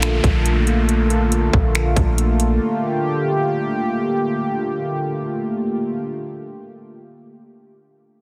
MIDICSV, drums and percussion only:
0, 0, Header, 1, 2, 480
1, 0, Start_track
1, 0, Key_signature, -2, "major"
1, 0, Tempo, 431655
1, 987, Time_signature, 4, 2, 24, 8
1, 9135, End_track
2, 0, Start_track
2, 0, Title_t, "Drums"
2, 26, Note_on_c, 9, 42, 75
2, 32, Note_on_c, 9, 26, 108
2, 137, Note_off_c, 9, 42, 0
2, 143, Note_off_c, 9, 26, 0
2, 264, Note_on_c, 9, 36, 93
2, 268, Note_on_c, 9, 42, 70
2, 376, Note_off_c, 9, 36, 0
2, 379, Note_off_c, 9, 42, 0
2, 507, Note_on_c, 9, 42, 71
2, 618, Note_off_c, 9, 42, 0
2, 745, Note_on_c, 9, 42, 71
2, 856, Note_off_c, 9, 42, 0
2, 987, Note_on_c, 9, 42, 71
2, 1099, Note_off_c, 9, 42, 0
2, 1226, Note_on_c, 9, 42, 71
2, 1338, Note_off_c, 9, 42, 0
2, 1466, Note_on_c, 9, 42, 77
2, 1577, Note_off_c, 9, 42, 0
2, 1706, Note_on_c, 9, 36, 97
2, 1817, Note_off_c, 9, 36, 0
2, 1944, Note_on_c, 9, 42, 75
2, 1950, Note_on_c, 9, 26, 107
2, 2055, Note_off_c, 9, 42, 0
2, 2061, Note_off_c, 9, 26, 0
2, 2185, Note_on_c, 9, 36, 91
2, 2187, Note_on_c, 9, 42, 66
2, 2296, Note_off_c, 9, 36, 0
2, 2298, Note_off_c, 9, 42, 0
2, 2426, Note_on_c, 9, 42, 72
2, 2537, Note_off_c, 9, 42, 0
2, 2666, Note_on_c, 9, 42, 73
2, 2777, Note_off_c, 9, 42, 0
2, 9135, End_track
0, 0, End_of_file